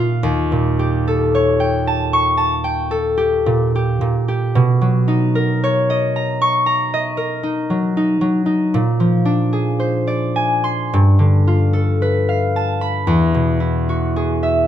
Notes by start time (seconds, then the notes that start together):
Already playing: A#2 F4 G4 D5 F5 G5 D6
0.23 D#2
0.52 A#2
0.79 G4
1.07 A4
1.35 C#5
1.60 G5
1.87 A5
2.13 C#6
2.37 A5
2.64 G5
2.91 A4
3.18 G4
3.46 A#2
3.75 G4
4.01 A#2
4.28 G4
4.55 B2
4.81 F#3
5.08 D#4
5.35 A#4
5.63 C#5
5.90 D#5
6.16 A#5
6.42 C#6
6.66 A#5
6.94 D#5
7.17 A#4
7.43 D#4
7.70 F#3
7.97 D#4
8.21 F#3
8.46 D#4
8.74 A#2
9.00 F3
9.25 D4
9.53 G#4
9.80 C5
10.07 D5
10.36 G#5
10.64 C6
10.93 G2
11.19 D3
11.47 F4
11.73 A4
12.02 B4
12.29 F5
12.56 A5
12.81 B5
13.07 E2
13.34 B2
13.60 E4
13.89 F#4
14.16 G#4
14.43 E5